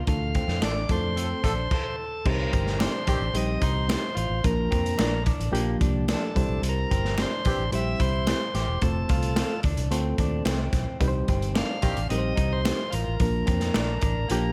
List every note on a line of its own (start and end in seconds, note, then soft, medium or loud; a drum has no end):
0.07 0.40 D2 loud
0.07 0.81 A3 medium
0.07 0.80 D4 medium
0.07 0.81 F4 medium
0.07 0.81 A4 medium
0.07 0.65 F5 loud
0.07 kick loud
0.07 closed hi-hat medium
0.35 0.58 C4 medium
0.35 kick medium
0.35 closed hi-hat medium
0.48 0.59 F2 loud
0.48 snare soft
0.62 0.83 A1 medium
0.62 0.73 F3 medium
0.62 0.76 D4 medium
0.62 0.74 D4 medium
0.62 0.85 D4 medium
0.62 0.76 F4 medium
0.62 0.74 A4 medium
0.62 0.76 A4 medium
0.62 0.77 D5 loud
0.62 0.92 D5 medium
0.62 finger snap medium
0.62 snare loud
0.62 closed hi-hat medium
0.89 1.32 F2 loud
0.89 1.55 A3 medium
0.89 1.55 C4 medium
0.89 1.13 D4 medium
0.89 1.56 F4 medium
0.89 1.56 A4 medium
0.89 1.96 C5 loud
0.89 kick loud
0.89 closed hi-hat medium
1.16 1.28 F3 medium
1.16 1.28 C4 medium
1.16 1.39 C4 loud
1.16 1.28 A4 medium
1.16 closed hi-hat medium
1.44 1.65 A#1 medium
1.44 1.53 F3 loud
1.44 1.53 C4 loud
1.44 1.66 D4 medium
1.44 1.53 A4 loud
1.44 kick medium
1.44 closed hi-hat medium
1.71 2.29 A4 medium
1.71 kick loud
1.71 crash medium
2.26 2.47 C2 loud
2.26 2.99 G3 medium
2.26 2.99 C4 medium
2.26 2.99 D#4 medium
2.26 2.99 G4 medium
2.26 2.84 A#4 medium
2.26 2.99 C5 medium
2.26 kick loud
2.26 crash loud
2.52 2.85 G1 loud
2.52 2.75 C4 medium
2.52 kick medium
2.52 closed hi-hat medium
2.67 snare soft
2.79 2.94 C4 medium
2.79 3.02 D4 medium
2.79 2.94 D#4 medium
2.79 2.94 G4 loud
2.79 2.94 C5 loud
2.79 3.37 C5 medium
2.79 finger snap medium
2.79 snare loud
2.79 closed hi-hat medium
3.06 3.18 A#1 medium
3.06 3.25 D#3 loud
3.06 3.25 C4 loud
3.06 3.29 D4 medium
3.06 3.25 G4 loud
3.06 kick loud
3.06 closed hi-hat medium
3.20 3.32 A1 medium
3.34 3.56 A#1 medium
3.34 4.08 G3 medium
3.34 3.57 C4 medium
3.34 4.08 C4 medium
3.34 4.08 D#4 medium
3.34 4.08 G4 medium
3.34 4.08 C5 medium
3.34 3.64 D#5 loud
3.34 closed hi-hat medium
3.62 3.95 C2 medium
3.62 3.85 D#4 medium
3.62 4.17 C5 loud
3.62 kick medium
3.62 closed hi-hat medium
3.88 4.03 C4 medium
3.88 4.03 D#4 medium
3.88 4.03 G4 medium
3.88 4.04 C5 loud
3.88 finger snap loud
3.88 snare loud
3.88 closed hi-hat loud
4.15 4.28 A1 medium
4.15 4.39 F4 medium
4.15 4.46 C5 medium
4.15 closed hi-hat medium
4.30 4.41 A1 medium
4.44 4.66 A#1 loud
4.44 5.17 F3 medium
4.44 5.18 A#3 medium
4.44 5.18 D4 medium
4.44 5.18 F4 medium
4.44 5.18 A#4 medium
4.44 5.23 A#4 medium
4.44 kick loud
4.44 closed hi-hat medium
4.71 4.93 F2 medium
4.71 4.94 C4 medium
4.71 kick medium
4.71 closed hi-hat medium
4.86 closed hi-hat medium
4.97 5.31 A#1 medium
4.97 5.21 D4 medium
4.97 5.12 D4 medium
4.97 5.13 F4 medium
4.97 5.13 A#4 medium
4.97 5.14 D5 medium
4.97 finger snap loud
4.97 snare loud
4.97 closed hi-hat medium
5.26 5.49 D4 medium
5.26 kick loud
5.26 closed hi-hat medium
5.40 5.50 A1 medium
5.40 closed hi-hat medium
5.52 5.75 A#1 loud
5.52 6.26 F3 medium
5.52 6.26 A#3 medium
5.52 5.76 A#3 loud
5.52 6.26 D4 medium
5.52 6.26 F4 medium
5.52 6.27 G4 loud
5.52 closed hi-hat medium
5.81 6.13 C2 medium
5.81 6.04 D4 medium
5.81 kick medium
5.81 closed hi-hat medium
6.08 6.22 D4 medium
6.08 6.60 D4 medium
6.08 6.22 F4 medium
6.08 6.22 A#4 medium
6.08 6.23 D5 medium
6.08 finger snap medium
6.08 snare loud
6.08 closed hi-hat medium
6.14 6.62 A4 medium
6.35 6.46 C2 loud
6.35 7.23 G3 medium
6.35 7.23 C4 medium
6.35 7.23 E4 medium
6.35 7.24 G4 medium
6.35 7.24 C5 medium
6.35 kick loud
6.35 closed hi-hat medium
6.49 6.60 B1 medium
6.62 6.84 C2 loud
6.62 closed hi-hat medium
6.69 7.22 A#4 loud
6.91 7.23 G1 loud
6.91 7.13 C4 medium
6.91 kick medium
6.91 closed hi-hat medium
7.05 snare soft
7.18 7.31 C4 medium
7.18 7.40 D4 medium
7.18 7.32 E4 medium
7.18 7.32 G4 medium
7.18 7.32 C5 medium
7.18 7.71 C5 loud
7.18 finger snap loud
7.18 snare loud
7.18 closed hi-hat medium
7.45 7.56 A#1 medium
7.45 7.62 E3 loud
7.45 7.63 C4 loud
7.45 7.68 D4 medium
7.45 7.63 G4 loud
7.45 kick loud
7.45 closed hi-hat medium
7.58 7.69 A1 medium
7.72 7.94 A#1 loud
7.72 8.45 G3 medium
7.72 7.95 C4 medium
7.72 8.46 C4 medium
7.72 8.46 E4 medium
7.72 8.46 G4 medium
7.72 8.46 C5 medium
7.72 8.02 E5 loud
7.72 closed hi-hat medium
8.00 8.32 C2 medium
8.00 8.22 E4 medium
8.00 8.54 C5 loud
8.00 kick medium
8.00 closed hi-hat medium
8.27 8.41 C4 medium
8.27 8.41 E4 medium
8.27 8.42 G4 medium
8.27 8.42 C5 medium
8.27 finger snap medium
8.27 snare loud
8.27 closed hi-hat medium
8.54 8.65 A1 loud
8.54 8.77 G4 medium
8.54 8.83 C5 medium
8.54 snare soft
8.54 closed hi-hat medium
8.67 8.78 E1 loud
8.82 9.03 F1 loud
8.82 9.55 A3 medium
8.82 9.55 C4 medium
8.82 9.55 F4 medium
8.82 9.60 A4 medium
8.82 9.56 A4 medium
8.82 9.55 C5 medium
8.82 kick loud
8.82 closed hi-hat medium
9.09 9.42 C2 loud
9.09 9.32 F4 medium
9.09 kick medium
9.09 closed hi-hat medium
9.23 closed hi-hat medium
9.36 9.50 C4 medium
9.36 9.59 F4 medium
9.36 9.51 F4 medium
9.36 9.51 A4 medium
9.36 9.51 C5 medium
9.36 finger snap medium
9.36 snare loud
9.36 closed hi-hat medium
9.63 9.75 D2 medium
9.63 9.87 D4 medium
9.63 kick loud
9.63 closed hi-hat medium
9.77 9.88 C2 medium
9.77 closed hi-hat medium
9.91 10.12 D2 loud
9.91 10.65 A3 medium
9.91 10.65 C4 medium
9.91 10.14 C4 medium
9.91 10.65 F4 medium
9.91 10.65 A4 medium
9.91 10.65 C5 loud
9.91 closed hi-hat medium
10.18 10.40 D#2 medium
10.18 10.42 D4 medium
10.18 kick medium
10.18 closed hi-hat medium
10.45 10.67 C2 loud
10.45 10.59 C4 medium
10.45 10.98 C4 medium
10.45 10.59 F4 loud
10.45 10.60 A4 loud
10.45 10.60 C5 loud
10.45 finger snap loud
10.45 snare loud
10.45 closed hi-hat loud
10.73 10.84 B1 loud
10.73 kick loud
10.73 snare soft
10.73 closed hi-hat medium
11.00 11.22 C2 loud
11.00 11.74 G3 medium
11.00 11.74 C4 medium
11.00 11.74 D#4 medium
11.00 11.74 G4 medium
11.00 11.08 B4 medium
11.00 kick loud
11.00 closed hi-hat medium
11.08 11.78 C5 loud
11.28 11.61 G1 loud
11.28 11.52 C4 medium
11.28 kick medium
11.28 closed hi-hat medium
11.42 closed hi-hat soft
11.55 11.69 C4 medium
11.55 11.78 D4 medium
11.55 11.70 D#4 medium
11.55 11.70 G4 medium
11.55 11.70 C5 medium
11.55 12.08 F5 loud
11.55 finger snap medium
11.55 snare loud
11.55 closed hi-hat medium
11.82 11.94 A#1 medium
11.82 12.00 D#3 loud
11.82 12.00 C4 medium
11.82 12.05 D4 medium
11.82 12.00 G4 loud
11.82 kick loud
11.82 closed hi-hat medium
11.97 12.08 A1 medium
11.97 closed hi-hat medium
12.09 12.32 A#1 medium
12.09 12.84 G3 medium
12.09 12.32 C4 medium
12.09 12.84 C4 medium
12.09 12.84 D#4 medium
12.09 12.84 G4 medium
12.09 12.18 A#4 medium
12.09 12.53 D#5 loud
12.09 closed hi-hat medium
12.18 12.88 C5 medium
12.36 12.70 C2 medium
12.36 12.59 D#4 medium
12.36 kick medium
12.36 closed hi-hat medium
12.53 12.94 C5 loud
12.65 12.79 C4 medium
12.65 12.79 D#4 medium
12.65 12.79 G4 loud
12.65 12.79 C5 medium
12.65 finger snap loud
12.65 snare loud
12.65 closed hi-hat loud
12.91 13.04 A1 loud
12.91 13.14 F4 medium
12.91 14.53 A#4 medium
12.91 closed hi-hat medium
13.08 13.18 A1 medium
13.20 13.42 A#1 loud
13.20 13.93 F3 medium
13.20 13.94 A#3 medium
13.20 13.94 D4 medium
13.20 13.94 F4 medium
13.20 13.94 A#4 medium
13.20 kick loud
13.20 closed hi-hat medium
13.47 13.69 F2 loud
13.47 13.70 C4 medium
13.47 kick medium
13.47 closed hi-hat medium
13.60 snare soft
13.60 closed hi-hat medium
13.74 13.97 A#1 loud
13.74 13.88 D4 medium
13.74 13.97 D4 medium
13.74 13.89 F4 medium
13.74 13.89 A#4 medium
13.74 13.89 D5 medium
13.74 finger snap medium
13.74 snare loud
13.74 closed hi-hat medium
14.01 14.24 A1 loud
14.01 14.24 D4 medium
14.01 kick loud
14.01 closed hi-hat medium
14.28 14.51 A#1 loud
14.28 14.53 F3 medium
14.28 14.52 A#3 medium
14.28 14.53 A#3 medium
14.28 14.53 D4 medium
14.28 14.53 F4 medium
14.28 14.53 G4 loud
14.28 closed hi-hat medium